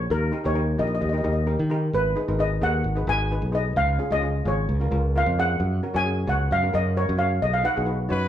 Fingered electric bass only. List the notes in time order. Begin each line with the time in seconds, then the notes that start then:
0.10 D#2
0.45 D#2
0.79 A#1
1.02 D#2
1.25 D#2
1.59 D#3
1.93 G#1
2.28 G#1
2.62 D#2
2.84 G#1
3.07 G#1
3.42 B1
3.76 C#2
4.11 C#2
4.45 G#1
4.69 C#2
4.92 C#2
5.26 F2
5.60 F#2
5.95 F#2
6.27 C#2
6.51 F#2
6.74 F#2
7.09 F#2
7.42 B1
7.77 B1
8.11 F#2